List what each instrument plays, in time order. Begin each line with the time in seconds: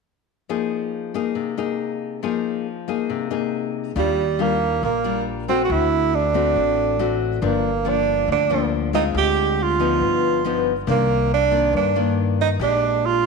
0.49 nylon-string guitar F3 A#3 D#4 G#4
1.14 nylon-string guitar A#3 D#4 G#4
1.35 nylon-string guitar C3
1.57 nylon-string guitar A#3 D#4 G#4
2.23 nylon-string guitar F3 A#3 D#4 G#4
2.88 nylon-string guitar A#3 D#4 G#4
3.10 nylon-string guitar C3
3.30 nylon-string guitar A#3 D#4 G#4
3.96 upright bass D#2, nylon-string guitar D#3 G3 D4 F4, tenor saxophone G3
4.39 nylon-string guitar G3 D4 F4, tenor saxophone A#3
4.83 upright bass A#1, nylon-string guitar A#2, tenor saxophone A#3
5.04 nylon-string guitar G3 D4 F4
5.48 nylon-string guitar A3 C4 F#4, tenor saxophone C4
5.65 tenor saxophone F#4
5.70 upright bass D2, nylon-string guitar D3, tenor saxophone E4
6.15 tenor saxophone D4
6.34 nylon-string guitar A3 C4 F#4
6.55 upright bass A1, nylon-string guitar A2
6.99 nylon-string guitar A3 C4 F#4
7.42 upright bass G1, nylon-string guitar G2 F3 A#3 D4
7.46 tenor saxophone A#3
7.85 nylon-string guitar F3 A#3 D4, tenor saxophone D4
8.28 upright bass D2, nylon-string guitar D3, tenor saxophone D4
8.50 nylon-string guitar F3 A#3 D4
8.93 nylon-string guitar G#3 C4 F4, tenor saxophone D#4
9.14 upright bass D2, nylon-string guitar D3, tenor saxophone G4
9.62 tenor saxophone F4
9.79 nylon-string guitar F3 B3 D#4
10.01 upright bass G1, nylon-string guitar G2
10.45 nylon-string guitar F3 B3 D#4
10.87 upright bass C2, nylon-string guitar C3 D#3 A#3 D4, tenor saxophone A#3
11.34 tenor saxophone D4
11.51 nylon-string guitar D#3 A#3 D4
11.73 upright bass G2, nylon-string guitar G2, tenor saxophone D4
11.96 nylon-string guitar D#3 A#3 D4
12.41 tenor saxophone D#4
12.60 upright bass A#1, nylon-string guitar A#2 G#3 D4 G4, tenor saxophone D4
13.06 tenor saxophone F4